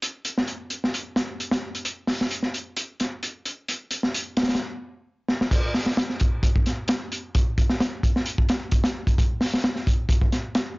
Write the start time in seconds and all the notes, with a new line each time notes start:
0.02 closed hi-hat
0.25 closed hi-hat
0.38 snare
0.47 closed hi-hat
0.70 closed hi-hat
0.84 snare
0.94 closed hi-hat
1.16 snare, closed hi-hat
1.40 closed hi-hat
1.51 snare, closed hi-hat
1.75 closed hi-hat
1.85 closed hi-hat
2.07 snare, open hi-hat
2.21 snare
2.31 closed hi-hat
2.43 snare
2.54 closed hi-hat
2.77 closed hi-hat
3.00 snare, closed hi-hat
3.23 closed hi-hat
3.45 closed hi-hat
3.68 closed hi-hat
3.91 closed hi-hat
4.03 snare
4.14 closed hi-hat
4.37 snare, closed hi-hat
4.43 snare, closed hi-hat
4.49 snare, closed hi-hat
4.55 snare, closed hi-hat
5.29 snare
5.41 snare
5.51 kick, closed hi-hat, crash
5.74 snare, open hi-hat
5.86 snare
5.97 snare, closed hi-hat
6.09 snare
6.20 kick, closed hi-hat
6.43 kick, closed hi-hat
6.56 kick
6.66 snare, closed hi-hat
6.88 snare, closed hi-hat
7.12 closed hi-hat
7.35 kick, closed hi-hat
7.58 kick, closed hi-hat
7.70 snare
7.80 snare, closed hi-hat
8.03 kick, closed hi-hat
8.16 snare
8.26 closed hi-hat
8.38 kick
8.49 snare, closed hi-hat
8.71 kick, closed hi-hat
8.84 snare, closed hi-hat
9.07 kick, closed hi-hat
9.18 kick, closed hi-hat
9.41 snare, open hi-hat
9.54 snare
9.64 snare, closed hi-hat
9.76 snare
9.87 kick, closed hi-hat
10.09 kick, closed hi-hat
10.21 kick
10.32 snare, closed hi-hat
10.55 snare, closed hi-hat